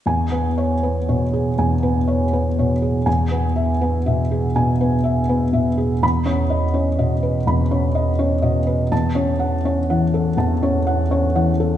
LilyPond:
<<
  \new Staff \with { instrumentName = "Felt piano" } { \time 4/4 \key cis \minor \tempo 4 = 82 << { gis''8 r2. r8 | gis''8 r2. r8 | b''8 r2. r8 | a''8 r2. r8 | } \\ { \tuplet 3/2 { r8 b'8 cis''8 b'8 cis''8 gis'8 gis''8 b'8 cis''8 b'8 cis''8 gis'8 } | \tuplet 3/2 { r8 b'8 e''8 b'8 e''8 gis'8 gis''8 b'8 e''8 b'8 e''8 gis'8 } | \tuplet 3/2 { r8 cis''8 dis''8 cis''8 dis''8 b'8 b''8 cis''8 dis''8 cis''8 dis''8 b'8 } | \tuplet 3/2 { r8 cis''8 fis''8 cis''8 fis''8 a'8 a''8 cis''8 fis''8 cis''8 fis''8 a'8 } | } >> }
  \new Staff \with { instrumentName = "Felt piano" } { \clef bass \time 4/4 \key cis \minor \tuplet 3/2 { e,8 b4 b8 b,4 e,8 b4 b8 b,4 } | \tuplet 3/2 { e,8 b4 b8 b,4 b,8 b4 b8 b,4 } | \tuplet 3/2 { e,8 cis'4 cis'8 b,4 e,8 cis'4 cis'8 b,4 } | \tuplet 3/2 { e,8 cis'4 cis'8 e4 e,8 cis'4 cis'8 e4 } | }
>>